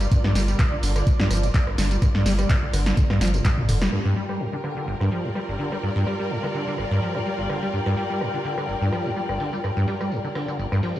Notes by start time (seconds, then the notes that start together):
Already playing: F4 A#4 D5
0.00 G3, closed hi-hat, tambourine
0.11 G2, kick, closed hi-hat, tambourine
0.24 G2, cross-stick, snare
0.35 G1 G3, snare, open hi-hat, tambourine
0.48 G3, closed hi-hat, tambourine
0.59 G2, kick, cross-stick, clap, closed hi-hat, tambourine
0.72 D3
0.83 G1 D3, open hi-hat, tambourine
0.96 D3, cross-stick, closed hi-hat, tambourine
1.07 G1, kick, closed hi-hat, tambourine
1.20 G2, snare
1.31 G1 F3, cross-stick, open hi-hat, tambourine
1.37 closed hi-hat
1.43 G2, closed hi-hat, tambourine
1.54 G3, kick, clap, closed hi-hat, tambourine
1.67 G1, cross-stick
1.78 G1 D3, snare, open hi-hat, tambourine
1.91 G3, closed hi-hat, tambourine
2.02 G2, kick, cross-stick, closed hi-hat, tambourine
2.15 G2, snare
2.26 G1 G3, snare, open hi-hat, tambourine
2.39 G3, cross-stick, closed hi-hat, tambourine
2.50 G2, kick, clap, closed hi-hat, tambourine
2.62 D3
2.73 G1 D3, cross-stick, open hi-hat, tambourine
2.86 D3, snare, closed hi-hat, tambourine
2.97 G1, kick, closed hi-hat, high tom, tambourine
3.10 G2, cross-stick, snare
3.21 G1 F3, snare, open hi-hat, tambourine
3.27 closed hi-hat
3.34 G2, closed hi-hat, mid tom, tambourine
3.45 G3, kick, cross-stick, clap, closed hi-hat, mid tom, tambourine
3.58 G1, mid tom
3.69 F1 D3, mid tom, open hi-hat, tambourine
3.81 G3, cross-stick, snare, closed hi-hat, tambourine
3.92 G2 G3 G5, cross-stick
4.05 G2, tambourine
4.13 G3 F4, open hi-hat
4.25 A#4
4.29 G3, cross-stick, tambourine
4.40 G2, tambourine
4.53 D3, tambourine
4.64 D3, cross-stick, open hi-hat
4.77 D3, tambourine
4.88 G1, tambourine
4.92 D5
5.01 G2, cross-stick, tambourine
5.12 F3, open hi-hat
5.24 G2, tambourine
5.35 G3, cross-stick, tambourine
5.48 G1, tambourine
5.59 D3, open hi-hat
5.72 G3, cross-stick, tambourine
5.83 G2, tambourine
5.96 G2
6.07 G3, cross-stick, open hi-hat
6.20 G3, tambourine
6.31 G2, tambourine
6.43 D3, cross-stick, tambourine
6.54 D3, open hi-hat
6.67 D3, tambourine
6.78 G1, cross-stick, tambourine
6.91 G2, tambourine
7.02 F3, open hi-hat
7.15 G2, cross-stick, tambourine
7.26 G3, tambourine
7.39 G1, tambourine
7.50 D3, cross-stick, open hi-hat
7.62 G3, tambourine
7.73 G2, tambourine
7.86 G2, cross-stick, tambourine
7.97 G3, open hi-hat
8.10 G3, tambourine
8.21 G2, cross-stick, tambourine
8.34 D3, tambourine
8.45 D3, open hi-hat
8.58 D3, cross-stick, tambourine
8.69 G1, tambourine
8.81 G2, tambourine
8.92 F3, cross-stick, open hi-hat
9.05 G2, tambourine
9.16 G3, tambourine
9.29 G1, cross-stick, tambourine
9.40 D3, open hi-hat
9.53 G3, tambourine
9.64 G2, cross-stick, tambourine
9.77 G2, tambourine
9.88 G3, open hi-hat
10.01 G3, cross-stick, tambourine
10.12 G2, tambourine
10.24 D3, tambourine
10.35 D3, cross-stick, open hi-hat
10.48 D3, tambourine
10.59 G1, tambourine
10.72 G2, cross-stick, tambourine
10.83 F3, open hi-hat
10.96 G2, tambourine